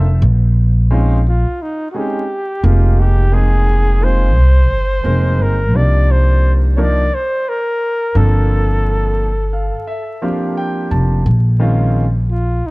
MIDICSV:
0, 0, Header, 1, 4, 480
1, 0, Start_track
1, 0, Key_signature, -3, "minor"
1, 0, Tempo, 689655
1, 157, Time_signature, 4, 2, 24, 8
1, 8843, End_track
2, 0, Start_track
2, 0, Title_t, "Flugelhorn"
2, 0, Program_c, 0, 56
2, 889, Note_on_c, 0, 65, 74
2, 1128, Note_on_c, 0, 63, 83
2, 1138, Note_off_c, 0, 65, 0
2, 1325, Note_off_c, 0, 63, 0
2, 1329, Note_on_c, 0, 66, 58
2, 1370, Note_on_c, 0, 67, 84
2, 1380, Note_off_c, 0, 66, 0
2, 1848, Note_on_c, 0, 65, 76
2, 1858, Note_off_c, 0, 67, 0
2, 2083, Note_on_c, 0, 67, 92
2, 2093, Note_off_c, 0, 65, 0
2, 2324, Note_on_c, 0, 68, 105
2, 2335, Note_off_c, 0, 67, 0
2, 2810, Note_on_c, 0, 72, 109
2, 2820, Note_off_c, 0, 68, 0
2, 3772, Note_on_c, 0, 70, 92
2, 3783, Note_off_c, 0, 72, 0
2, 4009, Note_on_c, 0, 74, 99
2, 4019, Note_off_c, 0, 70, 0
2, 4254, Note_on_c, 0, 72, 101
2, 4265, Note_off_c, 0, 74, 0
2, 4550, Note_off_c, 0, 72, 0
2, 4703, Note_on_c, 0, 73, 69
2, 4741, Note_on_c, 0, 74, 91
2, 4752, Note_off_c, 0, 73, 0
2, 4972, Note_on_c, 0, 72, 99
2, 4982, Note_off_c, 0, 74, 0
2, 5211, Note_on_c, 0, 70, 100
2, 5221, Note_off_c, 0, 72, 0
2, 5687, Note_on_c, 0, 69, 80
2, 5698, Note_off_c, 0, 70, 0
2, 7122, Note_off_c, 0, 69, 0
2, 8564, Note_on_c, 0, 65, 71
2, 8815, Note_on_c, 0, 63, 84
2, 8825, Note_off_c, 0, 65, 0
2, 8843, Note_off_c, 0, 63, 0
2, 8843, End_track
3, 0, Start_track
3, 0, Title_t, "Grand piano"
3, 0, Program_c, 1, 0
3, 0, Note_on_c, 1, 76, 67
3, 141, Note_off_c, 1, 76, 0
3, 631, Note_on_c, 1, 56, 80
3, 631, Note_on_c, 1, 60, 72
3, 636, Note_on_c, 1, 61, 69
3, 637, Note_on_c, 1, 65, 75
3, 640, Note_on_c, 1, 63, 65
3, 818, Note_off_c, 1, 56, 0
3, 818, Note_off_c, 1, 60, 0
3, 821, Note_off_c, 1, 61, 0
3, 822, Note_off_c, 1, 65, 0
3, 823, Note_off_c, 1, 63, 0
3, 1352, Note_on_c, 1, 56, 60
3, 1354, Note_on_c, 1, 60, 54
3, 1358, Note_on_c, 1, 61, 53
3, 1358, Note_on_c, 1, 63, 60
3, 1361, Note_on_c, 1, 68, 64
3, 1539, Note_off_c, 1, 56, 0
3, 1540, Note_off_c, 1, 60, 0
3, 1542, Note_off_c, 1, 61, 0
3, 1542, Note_off_c, 1, 63, 0
3, 1544, Note_off_c, 1, 68, 0
3, 1832, Note_on_c, 1, 56, 70
3, 1836, Note_on_c, 1, 58, 67
3, 1838, Note_on_c, 1, 60, 58
3, 1839, Note_on_c, 1, 63, 66
3, 1844, Note_on_c, 1, 67, 74
3, 2241, Note_off_c, 1, 56, 0
3, 2243, Note_off_c, 1, 58, 0
3, 2244, Note_off_c, 1, 60, 0
3, 2244, Note_off_c, 1, 63, 0
3, 2246, Note_off_c, 1, 67, 0
3, 2309, Note_on_c, 1, 56, 68
3, 2311, Note_on_c, 1, 58, 60
3, 2315, Note_on_c, 1, 63, 66
3, 2316, Note_on_c, 1, 60, 66
3, 2319, Note_on_c, 1, 68, 82
3, 2779, Note_off_c, 1, 56, 0
3, 2782, Note_off_c, 1, 58, 0
3, 2786, Note_off_c, 1, 60, 0
3, 2788, Note_off_c, 1, 63, 0
3, 2790, Note_on_c, 1, 56, 67
3, 2793, Note_on_c, 1, 58, 60
3, 2797, Note_on_c, 1, 60, 56
3, 2798, Note_on_c, 1, 63, 54
3, 2801, Note_on_c, 1, 65, 72
3, 2978, Note_off_c, 1, 56, 0
3, 2979, Note_off_c, 1, 58, 0
3, 2981, Note_off_c, 1, 60, 0
3, 2982, Note_off_c, 1, 63, 0
3, 2983, Note_off_c, 1, 65, 0
3, 3001, Note_off_c, 1, 68, 0
3, 3504, Note_on_c, 1, 56, 69
3, 3510, Note_on_c, 1, 58, 69
3, 3511, Note_on_c, 1, 60, 67
3, 3512, Note_on_c, 1, 63, 59
3, 3516, Note_on_c, 1, 70, 73
3, 3869, Note_off_c, 1, 56, 0
3, 3872, Note_off_c, 1, 58, 0
3, 3872, Note_off_c, 1, 60, 0
3, 3873, Note_off_c, 1, 63, 0
3, 3875, Note_off_c, 1, 70, 0
3, 3989, Note_on_c, 1, 53, 50
3, 3994, Note_on_c, 1, 58, 51
3, 3994, Note_on_c, 1, 62, 57
3, 3997, Note_on_c, 1, 63, 45
3, 4001, Note_on_c, 1, 67, 61
3, 4676, Note_off_c, 1, 53, 0
3, 4678, Note_off_c, 1, 62, 0
3, 4679, Note_off_c, 1, 58, 0
3, 4680, Note_off_c, 1, 63, 0
3, 4682, Note_off_c, 1, 67, 0
3, 4711, Note_on_c, 1, 53, 74
3, 4713, Note_on_c, 1, 58, 66
3, 4714, Note_on_c, 1, 62, 66
3, 4717, Note_on_c, 1, 63, 65
3, 4721, Note_on_c, 1, 70, 74
3, 4899, Note_off_c, 1, 53, 0
3, 4900, Note_off_c, 1, 58, 0
3, 4900, Note_off_c, 1, 62, 0
3, 4902, Note_off_c, 1, 63, 0
3, 4903, Note_off_c, 1, 70, 0
3, 5669, Note_on_c, 1, 53, 69
3, 5672, Note_on_c, 1, 58, 70
3, 5675, Note_on_c, 1, 60, 67
3, 5675, Note_on_c, 1, 62, 66
3, 5680, Note_on_c, 1, 69, 72
3, 6452, Note_off_c, 1, 53, 0
3, 6453, Note_off_c, 1, 58, 0
3, 6455, Note_off_c, 1, 60, 0
3, 6455, Note_off_c, 1, 62, 0
3, 6457, Note_off_c, 1, 69, 0
3, 6633, Note_on_c, 1, 77, 59
3, 6858, Note_off_c, 1, 77, 0
3, 6872, Note_on_c, 1, 76, 69
3, 7097, Note_off_c, 1, 76, 0
3, 7110, Note_on_c, 1, 53, 69
3, 7112, Note_on_c, 1, 58, 65
3, 7113, Note_on_c, 1, 60, 66
3, 7115, Note_on_c, 1, 77, 60
3, 7119, Note_on_c, 1, 62, 66
3, 7120, Note_on_c, 1, 67, 76
3, 7339, Note_off_c, 1, 77, 0
3, 7359, Note_on_c, 1, 79, 76
3, 7581, Note_off_c, 1, 79, 0
3, 7593, Note_on_c, 1, 81, 55
3, 7796, Note_off_c, 1, 53, 0
3, 7797, Note_off_c, 1, 58, 0
3, 7798, Note_off_c, 1, 60, 0
3, 7801, Note_off_c, 1, 62, 0
3, 7801, Note_off_c, 1, 67, 0
3, 7818, Note_off_c, 1, 81, 0
3, 8070, Note_on_c, 1, 51, 80
3, 8071, Note_on_c, 1, 56, 76
3, 8072, Note_on_c, 1, 60, 68
3, 8077, Note_on_c, 1, 61, 69
3, 8081, Note_on_c, 1, 65, 82
3, 8372, Note_off_c, 1, 51, 0
3, 8373, Note_off_c, 1, 56, 0
3, 8374, Note_off_c, 1, 60, 0
3, 8376, Note_off_c, 1, 61, 0
3, 8378, Note_off_c, 1, 65, 0
3, 8843, End_track
4, 0, Start_track
4, 0, Title_t, "Upright bass"
4, 0, Program_c, 2, 32
4, 0, Note_on_c, 2, 29, 86
4, 133, Note_off_c, 2, 29, 0
4, 153, Note_on_c, 2, 34, 106
4, 995, Note_off_c, 2, 34, 0
4, 1835, Note_on_c, 2, 29, 96
4, 3029, Note_off_c, 2, 29, 0
4, 3029, Note_on_c, 2, 36, 81
4, 3275, Note_off_c, 2, 36, 0
4, 3275, Note_on_c, 2, 31, 89
4, 3490, Note_off_c, 2, 31, 0
4, 3511, Note_on_c, 2, 29, 75
4, 3757, Note_off_c, 2, 29, 0
4, 3757, Note_on_c, 2, 31, 82
4, 3993, Note_off_c, 2, 31, 0
4, 3993, Note_on_c, 2, 36, 97
4, 4927, Note_off_c, 2, 36, 0
4, 5673, Note_on_c, 2, 31, 89
4, 6747, Note_off_c, 2, 31, 0
4, 7595, Note_on_c, 2, 29, 87
4, 7810, Note_off_c, 2, 29, 0
4, 7836, Note_on_c, 2, 34, 92
4, 8768, Note_off_c, 2, 34, 0
4, 8843, End_track
0, 0, End_of_file